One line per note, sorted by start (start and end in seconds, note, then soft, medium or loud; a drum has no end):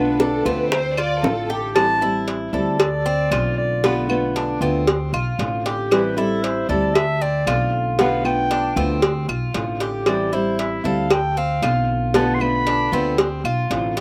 0.00 0.39 B1 medium
0.00 0.45 D3 medium
0.00 0.45 A3 medium
0.00 0.18 B3 medium
0.00 0.45 B3 medium
0.00 0.98 D4 loud
0.00 0.44 F4 medium
0.00 0.18 B4 medium
0.20 0.45 D4 medium
0.20 0.46 A4 medium
0.20 high bongo medium
0.45 1.19 D2 medium
0.45 0.70 D3 medium
0.45 0.71 A3 medium
0.45 0.71 B3 medium
0.45 0.96 C4 medium
0.45 0.70 F4 medium
0.45 0.72 B4 medium
0.45 high bongo soft
0.72 0.96 C5 loud
0.72 muted nylon-string guitar stroke medium
0.72 high bongo medium
0.97 1.48 F4 medium
0.97 1.24 D5 loud
0.97 high bongo soft
0.97 claves medium
1.23 2.47 A1 medium
1.23 1.75 D3 soft
1.23 1.75 A3 soft
1.23 1.75 C4 medium
1.23 1.75 F4 medium
1.23 1.76 A4 medium
1.23 high bongo soft
1.23 low bongo medium
1.50 1.75 G4 medium
1.50 high bongo soft
1.75 2.00 E3 medium
1.75 2.01 G3 medium
1.75 2.01 C4 medium
1.75 2.00 E4 medium
1.75 2.24 A5 loud
1.75 cowbell loud
1.75 claves medium
2.01 2.53 G3 medium
2.01 2.53 C4 medium
2.01 2.52 E4 medium
2.28 cowbell medium
2.53 3.27 D2 medium
2.53 2.79 G3 medium
2.53 2.79 C4 medium
2.53 2.78 E4 medium
2.53 3.04 A4 medium
2.53 3.54 D5 loud
2.79 muted nylon-string guitar stroke medium
2.79 cowbell loud
2.79 claves medium
3.06 3.31 C4 medium
3.31 4.55 B1 medium
3.31 3.82 D3 soft
3.31 3.83 A3 medium
3.31 3.83 C4 medium
3.31 3.82 F4 medium
3.31 3.83 F4 medium
3.31 cowbell medium
3.31 claves medium
3.58 4.06 D5 loud
3.83 4.08 B2 medium
3.83 4.09 D3 medium
3.83 4.09 A3 medium
3.83 4.34 B3 medium
3.83 4.09 B3 medium
3.83 4.08 F4 medium
3.83 cowbell loud
4.09 4.61 D3 medium
4.09 4.61 A3 medium
4.09 4.60 B3 medium
4.09 4.60 F4 medium
4.09 claves medium
4.36 4.61 D4 medium
4.36 cowbell medium
4.61 5.09 D2 medium
4.61 4.86 D3 medium
4.61 4.87 A3 medium
4.61 4.87 B3 medium
4.61 5.12 C4 medium
4.61 4.86 F4 medium
4.87 muted nylon-string guitar stroke medium
4.87 cowbell loud
5.13 5.37 B1 medium
5.13 5.64 F4 medium
5.13 claves medium
5.39 6.62 A1 medium
5.39 5.90 D3 soft
5.39 5.91 A3 medium
5.39 5.91 C4 medium
5.39 5.91 F4 medium
5.39 cowbell medium
5.66 6.16 G4 medium
5.66 cowbell medium
5.91 6.16 E3 medium
5.91 6.16 G3 medium
5.91 6.17 C4 medium
5.91 6.15 E4 medium
5.91 6.19 B4 loud
5.91 cowbell loud
5.91 claves medium
6.17 6.69 G3 medium
6.17 6.69 C4 medium
6.17 6.67 E4 medium
6.17 6.68 E4 medium
6.17 6.45 A4 medium
6.43 6.68 C5 medium
6.43 cowbell medium
6.69 7.43 D2 medium
6.69 6.95 G3 medium
6.69 6.95 C4 medium
6.69 6.94 E4 medium
6.69 7.20 A4 medium
6.69 6.97 D5 loud
6.95 7.24 E5 loud
6.95 muted nylon-string guitar stroke medium
6.95 cowbell loud
6.95 claves medium
7.21 7.47 C4 medium
7.21 7.74 D5 loud
7.47 8.70 B1 medium
7.47 7.98 D3 medium
7.47 7.98 A3 medium
7.47 7.99 C4 soft
7.47 7.98 F4 medium
7.47 7.99 F4 medium
7.47 cowbell medium
7.47 claves medium
7.99 8.24 B2 medium
7.99 8.24 D3 medium
7.99 8.24 A3 medium
7.99 8.49 B3 medium
7.99 8.24 B3 medium
7.99 8.23 F4 medium
7.99 8.24 F5 loud
7.99 cowbell loud
8.25 8.77 D3 medium
8.25 8.76 A3 medium
8.25 8.76 B3 medium
8.25 8.75 F4 medium
8.25 8.99 G5 loud
8.25 claves medium
8.51 8.76 D4 medium
8.51 cowbell medium
8.76 9.25 D2 loud
8.76 9.02 D3 medium
8.76 9.02 A3 medium
8.76 9.02 B3 medium
8.76 9.27 C4 medium
8.76 9.02 F4 medium
9.02 muted nylon-string guitar stroke medium
9.02 cowbell loud
9.29 9.53 B1 medium
9.29 9.79 F4 medium
9.29 claves medium
9.54 10.78 A1 medium
9.54 10.05 D3 soft
9.54 10.06 A3 medium
9.54 10.06 C4 soft
9.54 10.06 F4 medium
9.54 cowbell medium
9.80 10.31 G4 medium
9.80 cowbell medium
10.06 10.32 E3 medium
10.06 10.32 G3 medium
10.06 10.32 C4 medium
10.06 10.31 E4 medium
10.06 10.36 D5 loud
10.06 cowbell loud
10.06 claves medium
10.32 10.85 G3 medium
10.32 10.84 C4 medium
10.32 10.83 E4 medium
10.32 10.59 C5 medium
10.59 10.88 E5 medium
10.59 cowbell medium
10.84 11.59 D2 medium
10.84 11.10 G3 medium
10.84 11.10 C4 medium
10.84 11.09 E4 medium
10.84 11.35 A4 medium
10.84 11.14 F5 loud
11.10 11.39 G5 loud
11.10 muted nylon-string guitar stroke medium
11.10 cowbell loud
11.10 claves medium
11.37 11.62 C4 medium
11.37 11.89 F5 loud
11.62 12.86 B1 medium
11.62 12.13 D3 soft
11.62 12.14 A3 medium
11.62 12.14 C4 medium
11.62 12.13 F4 medium
11.62 12.14 F4 medium
11.62 cowbell medium
11.62 claves medium
12.14 12.39 B2 medium
12.14 12.40 D3 medium
12.14 12.40 A3 medium
12.14 12.65 B3 medium
12.14 12.39 B3 medium
12.14 12.39 F4 medium
12.14 12.36 A5 loud
12.14 cowbell loud
12.35 12.43 C6 medium
12.40 12.92 D3 medium
12.40 12.92 A3 medium
12.40 12.91 B3 medium
12.40 12.91 F4 medium
12.40 13.19 B5 loud
12.40 claves medium
12.67 12.92 D4 medium
12.67 cowbell medium
12.92 13.41 D2 medium
12.92 13.18 D3 medium
12.92 13.18 A3 medium
12.92 13.18 B3 medium
12.92 13.43 C4 medium
12.92 13.17 F4 medium
13.18 muted nylon-string guitar stroke medium
13.18 cowbell loud
13.44 13.69 B1 medium
13.44 13.95 F4 medium
13.44 claves medium
13.70 14.00 A1 loud
13.70 14.00 D3 soft
13.70 14.00 A3 medium
13.70 14.00 C4 medium
13.70 14.00 F4 medium
13.70 cowbell medium
13.97 14.00 G4 medium
13.97 cowbell medium